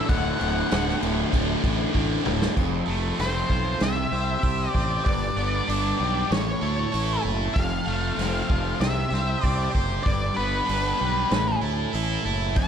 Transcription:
0.00 0.13 E5 loud
0.09 0.30 D1 medium
0.09 0.38 D2 loud
0.09 0.39 A2 medium
0.09 0.39 D3 medium
0.09 0.98 F#5 medium
0.09 kick loud
0.09 crash medium
0.39 0.61 D1 medium
0.39 0.70 D2 medium
0.39 0.70 A2 medium
0.39 0.71 D3 medium
0.39 crash medium
0.71 0.92 D1 medium
0.71 1.00 D2 medium
0.71 1.01 A2 medium
0.71 1.01 D3 medium
0.71 snare loud
0.71 crash medium
0.89 snare soft
1.01 1.23 D1 medium
1.01 1.31 D2 medium
1.01 1.31 A2 medium
1.01 1.32 D3 medium
1.01 crash medium
1.32 1.54 D1 medium
1.32 1.61 D2 medium
1.32 1.62 A2 medium
1.32 1.62 D3 loud
1.32 kick medium
1.32 crash medium
1.62 1.85 A1 medium
1.62 1.92 D2 medium
1.62 1.92 A2 medium
1.62 1.92 D3 medium
1.62 kick medium
1.62 crash medium
1.93 2.16 A1 medium
1.93 2.24 D2 medium
1.93 2.24 A2 medium
1.93 2.25 D3 medium
1.93 kick medium
2.25 2.47 D1 medium
2.25 2.55 D2 medium
2.25 2.55 A2 medium
2.25 2.55 D3 medium
2.25 mid tom medium
2.42 snare medium
2.56 2.80 F1 medium
2.56 3.80 F2 medium
2.56 kick loud
2.56 crash medium
2.88 3.11 F1 medium
2.88 3.81 A3 medium
3.19 3.42 F1 medium
3.19 3.81 C4 medium
3.19 3.84 C5 medium
3.19 snare soft
3.19 open hi-hat soft
3.48 3.73 B1 medium
3.48 3.81 F3 medium
3.48 3.80 F4 medium
3.48 kick medium
3.80 4.04 C2 medium
3.80 5.06 C3 medium
3.80 4.70 E5 loud
3.80 snare medium
3.80 open hi-hat soft
4.12 4.35 C2 medium
4.12 4.73 G4 medium
4.12 4.73 C5 medium
4.43 4.66 C2 medium
4.43 5.06 G4 medium
4.43 5.06 C5 medium
4.43 kick medium
4.43 open hi-hat soft
4.70 5.05 D5 loud
4.74 4.98 A1 medium
4.74 5.06 G4 medium
4.74 5.05 C5 medium
4.74 kick medium
5.05 5.29 G1 medium
5.05 6.31 G2 medium
5.05 6.32 D5 medium
5.05 kick loud
5.05 open hi-hat soft
5.37 5.60 G1 medium
5.37 6.31 B3 medium
5.68 5.92 G1 medium
5.68 6.31 D4 medium
5.68 open hi-hat soft
5.99 6.23 B1 medium
5.99 6.31 G3 medium
5.99 6.31 G4 medium
6.31 6.54 A1 medium
6.31 7.56 A2 medium
6.31 7.21 C#5 medium
6.31 snare loud
6.31 open hi-hat soft
6.61 6.85 D2 medium
6.61 7.21 E4 medium
6.61 7.23 A4 medium
6.92 7.17 A1 medium
6.92 7.56 E4 medium
6.92 7.55 A4 medium
6.92 open hi-hat soft
7.22 7.48 F#1 medium
7.22 7.55 E4 medium
7.22 7.56 A4 medium
7.54 7.79 F1 medium
7.54 8.81 F2 medium
7.54 8.80 F5 medium
7.54 kick loud
7.54 open hi-hat soft
7.87 8.10 F1 medium
7.87 8.81 A3 medium
8.15 8.41 F1 medium
8.15 8.79 C4 medium
8.15 open hi-hat soft
8.20 8.81 C4 medium
8.20 snare soft
8.48 8.73 F1 medium
8.48 8.80 F3 medium
8.48 8.81 F4 medium
8.48 kick medium
8.80 9.03 C2 medium
8.80 10.06 C3 medium
8.80 9.45 E5 medium
8.80 snare loud
8.80 open hi-hat soft
9.10 9.35 C2 medium
9.10 9.70 G4 medium
9.10 9.74 C5 medium
9.10 snare soft
9.41 9.67 C2 medium
9.41 10.06 G4 medium
9.41 10.05 C5 medium
9.41 9.70 D5 medium
9.41 kick medium
9.41 open hi-hat soft
9.71 10.04 G4 medium
9.71 kick medium
9.75 9.98 F#1 medium
9.75 10.06 C5 medium
10.03 10.29 G1 medium
10.03 11.31 G2 medium
10.03 10.37 D5 medium
10.03 kick loud
10.03 open hi-hat soft
10.34 10.60 G1 medium
10.34 11.29 B3 medium
10.34 11.58 B4 medium
10.39 11.32 B3 medium
10.69 10.92 G1 medium
10.69 11.31 D4 medium
10.69 open hi-hat soft
10.98 11.24 B1 medium
10.98 11.30 G3 medium
10.98 11.32 G4 medium
11.31 11.54 A1 medium
11.31 12.56 A2 medium
11.31 snare medium
11.31 open hi-hat soft
11.61 11.85 D2 medium
11.61 12.24 E4 medium
11.61 12.24 A4 medium
11.93 12.17 A1 medium
11.93 12.57 E4 medium
11.93 12.56 A4 medium
11.93 open hi-hat soft
12.25 12.57 F#1 medium
12.25 12.56 E4 medium
12.25 12.56 A4 medium
12.56 12.68 F1 medium
12.56 12.68 F2 medium
12.56 12.68 A5 medium
12.56 kick loud
12.56 open hi-hat medium

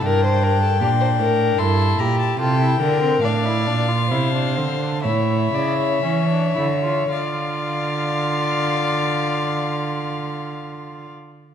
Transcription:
0.04 0.82 G2 medium
0.04 0.79 D4 medium
0.04 0.24 A#4 medium
0.04 1.60 G5 medium
0.25 0.44 C5 medium
0.43 0.61 A#4 medium
0.62 0.80 A4 medium
0.81 1.21 A#2 medium
0.81 1.60 D4 medium
0.81 0.89 G4 medium
1.00 1.08 C5 medium
1.19 1.58 A2 medium
1.19 1.60 A#4 medium
1.58 1.98 G2 medium
1.58 2.39 E4 medium
1.58 2.02 A4 medium
1.58 2.00 C6 medium
1.98 2.38 A#2 medium
1.98 2.40 G4 medium
1.98 2.19 A#5 medium
2.20 2.39 A5 medium
2.39 2.80 C3 medium
2.39 2.60 F4 medium
2.39 2.80 A4 medium
2.39 3.21 G5 medium
2.61 2.81 E4 medium
2.80 3.22 D3 medium
2.80 3.02 D4 medium
2.80 3.25 A#4 medium
3.02 3.23 C4 medium
3.22 3.68 A2 medium
3.22 3.47 D4 medium
3.22 4.10 D5 medium
3.22 5.01 F5 medium
3.45 3.68 E4 medium
3.66 4.13 A#2 medium
3.66 3.90 D4 medium
3.88 4.12 F4 medium
4.11 4.59 C3 medium
4.11 4.32 E4 medium
4.11 5.03 C5 medium
4.32 4.57 D4 medium
4.56 5.06 D3 medium
4.56 4.79 C4 medium
4.80 5.03 D4 medium
5.04 5.53 A2 medium
5.04 6.02 E4 medium
5.04 5.56 C#5 medium
5.04 7.08 E5 medium
5.54 6.04 C#3 medium
5.54 5.79 D5 medium
5.79 7.10 C#5 medium
6.03 6.57 E3 medium
6.03 6.29 C#4 medium
6.29 6.55 D4 medium
6.55 7.12 D3 medium
6.55 6.63 E4 medium
6.83 7.10 F4 medium
7.10 11.10 D3 medium
7.10 11.08 F4 medium
7.10 11.10 D5 medium
7.10 11.10 F5 medium

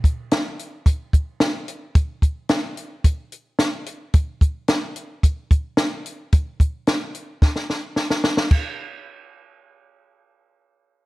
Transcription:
0.04 kick medium
0.04 closed hi-hat medium
0.31 snare medium
0.31 closed hi-hat medium
0.59 closed hi-hat medium
0.86 kick medium
0.86 closed hi-hat medium
1.13 kick medium
1.13 closed hi-hat medium
1.40 snare medium
1.40 closed hi-hat medium
1.68 closed hi-hat medium
1.95 kick loud
1.95 closed hi-hat medium
2.22 kick medium
2.22 closed hi-hat medium
2.49 snare loud
2.49 closed hi-hat medium
2.77 closed hi-hat medium
3.04 kick medium
3.04 closed hi-hat medium
3.32 closed hi-hat soft
3.59 snare medium
3.59 closed hi-hat medium
3.86 closed hi-hat medium
4.14 kick loud
4.14 closed hi-hat medium
4.41 kick medium
4.41 closed hi-hat medium
4.68 snare medium
4.68 closed hi-hat medium
4.96 closed hi-hat medium
5.23 kick medium
5.23 closed hi-hat medium
5.51 kick medium
5.51 closed hi-hat soft
5.77 snare medium
5.77 closed hi-hat medium
6.06 closed hi-hat medium
6.32 kick loud
6.32 closed hi-hat medium
6.60 kick medium
6.60 closed hi-hat soft
6.87 snare medium
6.87 closed hi-hat medium
7.15 closed hi-hat medium
7.42 kick medium
7.42 snare soft
7.56 snare soft
7.70 snare soft
7.96 snare medium
8.10 snare medium
8.24 snare medium
8.37 snare medium
8.51 kick medium
8.51 crash medium

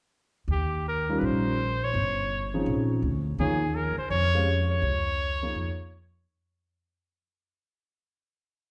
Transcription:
0.48 1.17 D#2 medium
0.48 0.84 G4 medium
0.88 1.21 A#4 medium
1.09 1.56 G3 medium
1.09 1.56 C#4 medium
1.09 1.56 D#4 medium
1.09 1.56 F4 soft
1.09 1.56 A#4 medium
1.19 1.90 A#1 medium
1.19 1.27 B4 medium
1.25 1.86 C5 medium
1.84 2.55 C#5 medium
1.94 2.63 G1 medium
2.54 3.00 F3 medium
2.54 3.00 C4 medium
2.54 3.00 C#4 medium
2.54 3.01 D#4 medium
2.54 3.01 G#4 medium
2.66 3.00 A#1 medium
3.02 3.36 D2 medium
3.38 3.94 D#2 medium
3.38 3.60 F3 medium
3.38 3.60 A#3 medium
3.38 3.60 D#4 medium
3.38 3.60 G#4 medium
3.38 3.77 G#4 medium
3.38 3.60 C#5 medium
3.75 3.98 A#4 medium
3.98 4.10 C5 medium
3.98 muted upright bass stroke soft
4.10 4.80 F2 medium
4.10 4.66 C#5 loud
4.34 4.46 G#3 medium
4.34 4.46 C#4 soft
4.34 4.46 G4 soft
4.34 4.46 C5 medium
4.34 4.46 F5 medium
4.72 6.12 C#5 loud
4.82 5.51 C#2 medium
5.42 5.89 F3 medium
5.42 5.89 A#3 medium
5.42 5.90 D#4 medium
5.42 5.90 G#4 medium
5.42 5.89 C#5 medium
5.55 6.24 F2 medium

